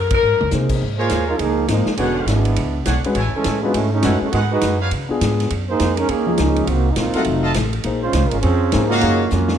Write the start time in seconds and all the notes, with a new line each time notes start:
Already playing: F#2
0.00 A#4
0.10 A#4, kick, ride
0.23 G#2
0.33 F#2
0.41 D#2, mid tom
0.51 C3 A#3 D#4 G#4 C5, snare, hi-hat pedal
0.69 kick, crash
0.82 G#2
0.98 A#3 D#4 F4 G#4 A#4 C5 C#5 F5
1.10 D#2, snare, hi-hat pedal, ride
1.28 G#3 D#4 F4 A#4
1.39 C#2 F3 A#3 D#4 G#4, ride
1.68 G#1 F3 G#3 A#3 D#4 G#4 C5, snare, hi-hat pedal, ride
1.86 muted upright bass stroke, snare
1.97 E1 D3 G#3 B3 C#4 D4 F#4 G#4 B4 C#5 F#5, ride
2.26 G#1 G#3 B3 D4 E4, snare, hi-hat pedal, ride
2.45 ride
2.56 C#2, ride
2.86 B1 D4 G#4 C#5 F#5, snare, hi-hat pedal, ride
3.04 G#3 C#4 F#4 B4, muted upright bass stroke, ride
3.15 A1 E4 A4 C#5 G#5, ride
3.34 E3 G#3 C#4 A4, muted upright bass stroke
3.44 A2, snare, hi-hat pedal, ride
3.63 G#3 B3 C#4 D4 F4 F#4 B4
3.74 G#2 G#3 A3 C#4 E4, ride
3.93 G#3 A3 C#4 D#4
4.02 F#2 G#3 C#4 E4 F#4 A4 B4 C#5 F#5, snare, hi-hat pedal, ride
4.21 G#3 A3 C#4 E4, muted upright bass stroke
4.32 G#2 D#3 G#3 B3 D#4 F#4 G#4 B4 F#5, ride
4.51 G#3 D#4 F#4 B4
4.61 F#2, snare, hi-hat pedal, ride
4.80 D4 B4 C#5 F5
4.91 C#3, ride
5.09 B3 D4 F4 G#4, muted upright bass stroke
5.21 G#2, snare, hi-hat pedal, ride
5.40 snare, ride
5.50 F#2, ride
5.70 A#3 D#4 G#4 C5
5.80 F2, snare, hi-hat pedal, ride
5.97 G#3 C#4 D#4 A#4, ride
6.09 D#2 D#3 A#3 C#4 G#4, ride
6.26 F3 A#3 D#4 G#4
6.38 C#2 G#3 A#3 C#4 D#4, snare, hi-hat pedal, ride
6.56 ride
6.67 C2 D#3 A#3 C4 F#4, ride
6.91 D#4
6.96 A#1 A#3 C4 D#4 F4, snare, hi-hat pedal, ride
7.14 F#3 A3 C4 D#4 F4 A4 D#5 F#5, muted upright bass stroke, ride
7.24 F1, ride
7.42 F4 A4 D#5 A5
7.54 A1, snare, hi-hat pedal, ride
7.73 ride
7.84 A#1 A#3 D#4 G#4 C5, ride
8.02 G#3 C#4 F4 C5
8.13 C#2, snare, hi-hat pedal, ride
8.23 A#1
8.29 G#1 G#3 C#4 F4 A#4, ride
8.41 F2 F3 C4 C#4 G#4, ride
8.72 G#2 A#3 D#4 G#4 C5, snare, hi-hat pedal, ride
8.88 C#3 A#3 F4 F#4 C#5 D#5 F5
9.01 F#2 A#3 D#4 G#4 C#5, ride
9.29 F2 F#3 A#3 C#4 F4, snare, hi-hat pedal
9.48 snare